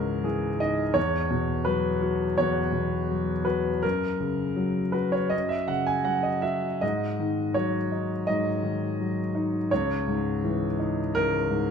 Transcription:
Already playing: C#2 G#2 E3 D#4 A#4 C#5
0.24 E3 G#4
0.60 D#4 D#5
0.94 E2 C#5
1.30 B2
1.65 F#3 B4
2.01 F#4
2.38 E2 C#5
2.72 B2
3.09 F#3
3.45 F#4 B4
3.83 F#2 A#4
4.20 C#3
4.56 F#3
4.92 F#4 B4
5.12 C#5
5.30 F#2 D#5
5.49 E5
5.68 C#3 F#5
5.87 G#5
6.05 F#3 F#5
6.23 D#5
6.42 F#4 E5
6.81 G#2 D#5
7.19 D#3
7.54 F#3 C#5
7.92 D#4
8.27 G#2 D#5
8.63 D#3
9.01 F#3
9.35 D#4
9.71 C#2 C#5
10.07 G#2
10.44 E3
10.79 D#4
11.15 C#2 A#4
11.51 G#2

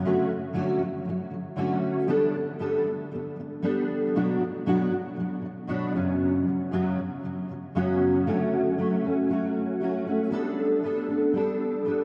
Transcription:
0.04 D3 F#3 A3 C#4 F#4
0.28 D3 F#3
0.53 D3 F#3 A3 C#4 F#4
0.80 D3 F#3
1.05 D3 F#3
1.30 D3 F#3
1.56 D3 F#3 A3 C#4 F#4
2.07 G3 B3 D4 A4
2.34 G3 B3
2.59 G3 B3 D4 A4
2.84 G3 B3
3.11 G3 B3
3.36 G3 B3
3.62 G3 B3 D4 A4
4.15 B2 F#3 B3 D4 F#4
4.40 B2 F#3
4.66 B2 F#3 B3 D4 F#4
4.91 B2 F#3
5.16 B2 F#3
5.41 B2 F#3
5.67 B2 F#3 B3 D4 F#4
5.95 F#2 C#3 F#3 B3 C#4 F#4
6.46 F#2 C#3 F#3
6.71 F#2 C#3 F#3 B3 C#4 F#4
6.96 F#2 C#3 F#3
7.22 F#2 C#3 F#3
7.48 F#2 C#3 F#3
7.75 F#2 C#3 F#3 B3 C#4 F#4
8.26 D3 F#3 A3 C#4 F#4
8.78 F#3 A3 C#4 F#4
9.04 A3 C#4 F#4
9.30 F#3 A3 C#4 F#4
9.80 F#3 A3 C#4 F#4
10.06 A3 C#4 F#4
10.31 G3 B3 D4 A4
10.82 G3 B3 D4 A4
11.08 B3 D4 A4
11.33 G3 B3 D4 A4
11.85 G3 B3 D4 A4

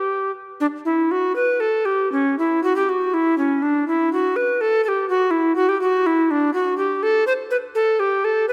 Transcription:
Already playing: G4
0.60 D4
0.85 E4
1.11 F#4
1.36 B4
1.60 A4
1.85 G4
2.12 C#4
2.39 E4
2.63 F#4
2.76 G4
2.89 F#4
3.14 E4
3.38 C#4
3.62 D4
3.88 E4
4.13 F#4
4.36 B4
4.61 A4
4.84 A4
4.88 G4
5.09 F#4
5.31 E4
5.55 F#4
5.69 G4
5.81 F#4
6.06 E4
6.31 D4
6.54 F#4
6.77 G4
7.03 A4
7.27 C5
7.51 B4
7.75 A4
8.00 G4
8.24 A4
8.48 B4

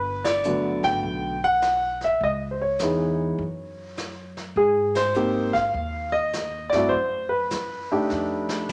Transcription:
Already playing: G1 B4
0.24 D5, snare, ride
0.44 D3 F#3 A3 B3, hi-hat pedal
0.83 G#1 G5, snare
1.03 B1, brush sweep, kick
1.44 F#5
1.62 snare, hi-hat pedal
2.01 E5, snare
2.20 C#2 D#5, brush sweep, kick
2.51 C5
2.62 C#5
2.79 E2 E3 G#3 B3 D#4, snare, hi-hat pedal
3.38 F#2, brush sweep, kick
3.97 snare, hi-hat pedal
4.37 snare
4.56 G#2 G#4, brush sweep, kick
4.95 C5, snare, ride
5.14 A#3 C4 D#4 G4, hi-hat pedal
5.53 F5, kick, snare
5.74 D#2, brush sweep, kick
6.12 D#5
6.33 snare, hi-hat pedal
6.70 G2 D5, snare
6.74 A3 C4 E4 F#4
6.89 F#2 C5, brush sweep, kick
7.29 B4
7.50 F#2, snare, hi-hat pedal
7.92 A3 D4 D#4 G4
8.10 F2, snare
8.49 snare
8.69 hi-hat pedal, high tom

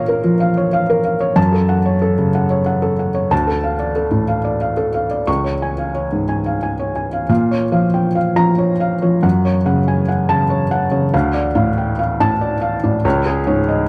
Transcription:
Already playing: A#2 A#4 C#5 F5 A#5
0.08 A#4
0.24 F3
0.40 F5
0.57 C#5
0.73 F5
0.90 A#4
1.05 F5
1.21 C#5
1.36 F#2 A5
1.52 A4
1.69 F#5
1.86 C#5
2.02 A4
2.19 C#3
2.35 F#5
2.50 C#5
2.66 F#5
2.82 A4
2.99 F#5
3.15 C#5
3.31 D2 A5
3.47 A4
3.64 F5
3.79 D5
3.96 A4
4.11 A2
4.28 F5
4.45 D5
4.61 F5
4.77 A4
4.94 F5
5.11 D5
5.27 C#2 C#6
5.44 C#5
5.62 G#5
5.78 F5
5.95 C#5
6.12 G#2
6.29 G#5
6.46 F5
6.63 G#5
6.79 C#5
6.96 G#5
7.13 F5
7.29 A#2 F5
7.51 C#5
7.72 F3 F5
7.94 G5
8.15 F5
8.36 F3 A#5
8.58 C#5
8.80 F5
9.02 F3 C#5
9.23 F#2 F#5
9.45 C#5
9.66 C#3 F#5
9.88 G#5
10.08 F#5
10.29 C#3 A5
10.50 C#5
10.71 F#5
10.91 C#3 C#5
11.14 D2 F5
11.34 D5
11.55 A2 F5
11.78 G5
11.99 F5
12.20 A2 A5
12.41 D5
12.61 F5
12.84 A2 D5
13.05 C#2 C#5
13.26 G#4
13.47 G#2 C#5
13.68 D#5

